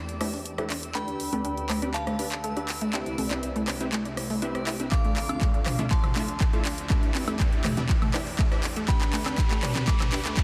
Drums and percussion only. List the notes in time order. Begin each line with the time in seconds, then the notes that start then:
0.09 closed hi-hat
0.21 cross-stick, open hi-hat
0.34 open hi-hat
0.46 closed hi-hat
0.58 cross-stick, closed hi-hat
0.70 clap, open hi-hat
0.83 closed hi-hat
0.95 clap, closed hi-hat
1.08 closed hi-hat
1.20 open hi-hat
1.33 closed hi-hat, high conga
1.45 closed hi-hat
1.57 closed hi-hat
1.69 cross-stick, clap, open hi-hat
1.82 closed hi-hat, high conga
1.94 clap, closed hi-hat
2.07 cross-stick, closed hi-hat
2.19 open hi-hat
2.32 clap, closed hi-hat
2.44 closed hi-hat
2.57 closed hi-hat
2.69 clap, open hi-hat
2.81 closed hi-hat
2.93 clap, closed hi-hat
3.06 closed hi-hat
3.18 open hi-hat, high conga
3.31 clap, closed hi-hat, high conga
3.43 closed hi-hat
3.56 closed hi-hat
3.68 cross-stick, clap, open hi-hat
3.81 closed hi-hat, high conga
3.93 clap, closed hi-hat
4.05 closed hi-hat
4.17 cross-stick, open hi-hat
4.30 open hi-hat
4.42 closed hi-hat
4.55 cross-stick, closed hi-hat
4.67 clap, open hi-hat
4.80 closed hi-hat
4.92 kick, clap, closed hi-hat
5.05 closed hi-hat
5.16 clap, open hi-hat
5.29 closed hi-hat, high conga, high woodblock
5.41 kick, clap, closed hi-hat
5.54 closed hi-hat
5.66 cross-stick, clap, mid tom, open hi-hat
5.79 closed hi-hat, mid tom, high conga
5.91 kick, clap, closed hi-hat
6.04 cross-stick, closed hi-hat, mid tom, high woodblock
6.16 clap, open hi-hat
6.28 closed hi-hat
6.40 kick, clap, closed hi-hat
6.53 closed hi-hat
6.65 clap, open hi-hat
6.78 closed hi-hat
6.90 kick, clap, closed hi-hat
7.03 closed hi-hat
7.15 clap, open hi-hat, high conga
7.28 closed hi-hat, high conga, high woodblock
7.40 kick, clap, closed hi-hat
7.52 closed hi-hat
7.64 cross-stick, clap, mid tom, open hi-hat
7.77 closed hi-hat, mid tom, high conga
7.89 kick, clap, closed hi-hat
8.02 closed hi-hat, mid tom, high woodblock
8.14 cross-stick, clap, open hi-hat
8.27 open hi-hat
8.39 kick, clap, closed hi-hat
8.52 cross-stick, closed hi-hat
8.64 clap, open hi-hat
8.76 closed hi-hat
8.88 kick, clap, closed hi-hat
9.01 clap, closed hi-hat
9.13 clap, open hi-hat
9.26 clap, closed hi-hat, high conga, high woodblock
9.38 kick, clap, closed hi-hat
9.51 clap, closed hi-hat
9.63 cross-stick, clap, mid tom, open hi-hat
9.76 clap, closed hi-hat, mid tom, high conga
9.88 kick, clap, closed hi-hat
10.00 cross-stick, clap, closed hi-hat, mid tom, high woodblock
10.12 clap, open hi-hat
10.25 clap, closed hi-hat
10.37 kick, clap, closed hi-hat